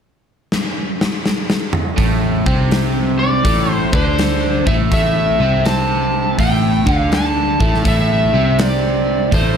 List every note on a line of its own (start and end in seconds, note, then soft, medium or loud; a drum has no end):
0.52 snare medium
1.01 snare medium
1.26 snare medium
1.50 snare medium
1.73 mid tom loud
1.97 2.43 A1 medium
1.97 2.44 A2 medium
1.97 2.45 A3 medium
1.97 kick medium
1.97 open hi-hat soft
2.46 3.41 C2 medium
2.46 3.43 C3 medium
2.46 3.44 C4 medium
2.46 kick medium
2.71 snare loud
2.71 open hi-hat soft
3.19 3.71 D5 medium
3.44 3.90 A1 medium
3.44 3.91 A2 medium
3.44 3.92 A3 medium
3.44 kick loud
3.44 open hi-hat soft
3.71 3.89 C5 medium
3.92 4.63 D2 medium
3.92 4.65 D3 medium
3.92 4.65 D4 loud
3.92 4.69 C5 medium
3.92 kick loud
4.19 snare medium
4.19 open hi-hat soft
4.66 4.90 A1 medium
4.66 4.90 A2 medium
4.66 4.91 A3 medium
4.66 4.74 E5 medium
4.66 kick loud
4.91 5.37 A1 medium
4.91 5.38 A2 medium
4.91 5.39 A3 medium
4.91 5.68 E5 medium
4.91 kick medium
4.91 open hi-hat soft
5.40 6.34 C2 medium
5.40 6.38 C3 medium
5.40 6.38 C4 medium
5.65 6.40 A5 medium
5.65 snare loud
5.65 open hi-hat soft
6.38 6.84 A1 medium
6.38 6.86 A2 medium
6.38 6.86 A3 medium
6.38 6.95 G5 medium
6.38 kick medium
6.38 open hi-hat soft
6.86 7.56 D2 medium
6.86 7.59 D3 medium
6.86 7.59 D4 loud
6.86 kick loud
6.95 7.13 F5 medium
7.12 7.88 A5 medium
7.12 snare medium
7.12 open hi-hat soft
7.60 7.84 A1 medium
7.60 7.83 A2 medium
7.60 7.84 A3 medium
7.60 kick medium
7.74 snare soft
7.84 8.30 A1 medium
7.84 8.32 A2 medium
7.84 8.32 A3 medium
7.84 8.62 E5 medium
7.84 kick loud
7.84 open hi-hat soft
8.34 9.28 C2 medium
8.34 9.31 C3 medium
8.34 9.32 C4 medium
8.59 9.34 D5 medium
8.59 snare loud
8.59 open hi-hat medium
9.32 9.57 A1 medium
9.32 9.57 A2 medium
9.32 9.57 A3 medium
9.32 9.57 C5 medium
9.32 kick medium
9.32 open hi-hat soft